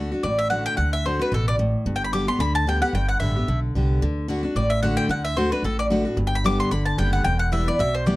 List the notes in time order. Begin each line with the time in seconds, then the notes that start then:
Already playing: D2 D3 A3 D4
0.00 F#4
0.12 D4 F#4
0.23 A1 A2 D5
0.39 E5
0.50 D3 A3 D4 F#4 F#5
0.66 G5
0.77 D2 D3 F#5
0.93 E5
1.05 D3 A3 D4 F#4 C5
1.19 D4 F#4 B4
1.32 A1 B2 A4
1.48 D5
1.59 A2
1.86 G1 G2
1.96 G5
2.04 B5
2.13 D3 G3 B3 G4 D6
2.27 B3 G4 C6
2.39 D2 D3 B5
2.55 A5
2.66 D3 G3 B3 G4 G5
2.82 B3 G4 F#5
2.93 G1 G2 G5
3.09 F#5
3.20 A1 D3 G3 B3 G4 E5
3.36 B3 G4
3.48 B1 D3
3.75 C2 D3 G3 B3 G4
4.02 D2 D3
4.28 D3 A3 D4 F#4
4.43 D4 F#4
4.55 A1 A2 D5
4.70 E5
4.83 D3 A3 D4 F#4 F#5
4.97 G5
5.09 D2 D3 F#5
5.25 E5
5.36 D3 A3 D4 F#4 C5
5.51 D4 F#4 B4
5.63 A1 A2 A4
5.79 D5
5.90 D3 A3 D4 F#4
6.05 D4 F#4
6.17 G1 G2
6.27 G5
6.35 B5
6.44 D3 G3 B3 G4 D6
6.60 C6
6.71 G1 D3 B5
6.86 A5
6.98 F#1 D3 G3 B3 G4 G5
7.13 F#5
7.24 E1 E2 G5
7.39 F#5
7.52 E3 G3 B3 E4 E5
7.67 B3 E4 D5
7.79 B1 B2 E5
7.94 C5
8.06 E3 G3 B3 E4 D5